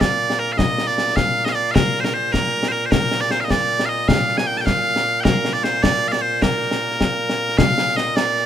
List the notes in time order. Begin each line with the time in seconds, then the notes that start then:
Already playing: A#2 A#3
0.01 D5, concert bass drum, snare
0.30 snare
0.39 A#4
0.53 F5
0.58 D#5, concert bass drum, snare
0.78 snare
0.87 D5, snare
0.97 D5, snare
1.08 snare
1.16 F5, concert bass drum, snare
1.45 D#5, snare
1.50 D#5
1.55 D5
1.71 A#4 F5
1.76 concert bass drum, snare
1.95 snare
2.00 C5
2.04 A#4, snare
2.14 C5
2.32 A#4, concert bass drum, snare
2.63 snare
2.68 A#4 C5
2.86 C5
2.91 A#4, concert bass drum, snare
3.12 snare
3.21 D5, snare
3.31 C5, snare
3.40 D#5 F5, snare
3.50 D5, concert bass drum, snare
3.80 snare
3.86 D#5 F5
4.08 F5, concert bass drum, snare
4.28 snare
4.37 G#5, snare
4.47 G5
4.57 G5 A5, snare
4.66 F5, concert bass drum, snare
4.96 snare
5.21 A#4 G5
5.25 concert bass drum, snare
5.45 snare
5.53 D5, snare
5.64 C5, snare
5.74 snare
5.83 D5, concert bass drum, snare
6.08 D5 F5
6.13 D5, snare
6.22 C5
6.42 A#4, concert bass drum, snare
6.62 snare
6.71 snare
6.91 snare
7.01 concert bass drum, snare
7.30 snare
7.49 snare
7.58 F5, concert bass drum, snare
7.78 snare
7.88 snare
7.96 D#5, snare
8.16 D5, snare
8.36 snare